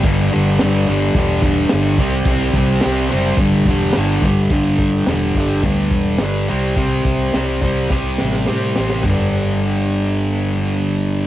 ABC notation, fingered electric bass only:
X:1
M:4/4
L:1/8
Q:1/4=106
K:Clyd
V:1 name="Fingered electric bass" clef=bass
G,,, G,,, G,,, G,,, E,,,2 G,,, C,, | C,, C,, C,, F,,, G,,, E,,, G,,, G,,, | G,,,2 E,,, G,,, D,, E,,, G,,, C,, | C,, C,, C,, C,, C,, A,,, A,, A,,, |
G,,,8 |]